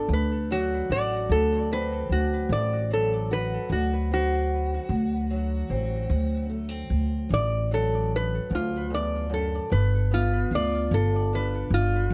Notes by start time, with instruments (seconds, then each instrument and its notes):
Already playing: steel-string acoustic guitar D4
0.08 upright bass D2, steel-string acoustic guitar D2
0.13 resonator guitar played with a steel bar B4
0.51 steel-string acoustic guitar F#3, resonator guitar played with a steel bar F#4
0.90 upright bass A1, steel-string acoustic guitar F#4, resonator guitar played with a steel bar D5
1.29 upright bass D2, steel-string acoustic guitar D2, resonator guitar played with a steel bar A4
1.72 steel-string acoustic guitar C4, resonator guitar played with a steel bar B4
2.09 upright bass D2, resonator guitar played with a steel bar F#4
2.49 upright bass A1, steel-string acoustic guitar D2, resonator guitar played with a steel bar D5
2.91 steel-string acoustic guitar F#3, resonator guitar played with a steel bar A4
3.31 steel-string acoustic guitar F#4, resonator guitar played with a steel bar B4
3.69 steel-string acoustic guitar D2, upright bass D2, resonator guitar played with a steel bar F#4
4.11 steel-string acoustic guitar C4, resonator guitar played with a steel bar F#4
4.89 steel-string acoustic guitar D2, upright bass D2
5.31 steel-string acoustic guitar F#3
5.70 upright bass A1, steel-string acoustic guitar C4
6.09 upright bass D2, steel-string acoustic guitar D2
6.50 steel-string acoustic guitar A3
6.69 steel-string acoustic guitar C4
6.90 upright bass D2
7.29 upright bass A1, steel-string acoustic guitar D2
7.33 resonator guitar played with a steel bar D5
7.71 steel-string acoustic guitar F#3, resonator guitar played with a steel bar A4
8.16 resonator guitar played with a steel bar B4
8.50 steel-string acoustic guitar D2, upright bass D2
8.55 resonator guitar played with a steel bar F4
8.90 steel-string acoustic guitar E2
8.94 resonator guitar played with a steel bar D5
9.30 steel-string acoustic guitar F#2, resonator guitar played with a steel bar A4
9.70 upright bass G1, steel-string acoustic guitar G2, resonator guitar played with a steel bar B4
10.11 steel-string acoustic guitar B3, resonator guitar played with a steel bar F4
10.51 upright bass D2, steel-string acoustic guitar F4
10.55 resonator guitar played with a steel bar D5
10.91 upright bass G1, steel-string acoustic guitar G2, resonator guitar played with a steel bar A4
11.33 steel-string acoustic guitar D4, resonator guitar played with a steel bar B4
11.70 upright bass G1, resonator guitar played with a steel bar F4
12.10 upright bass D2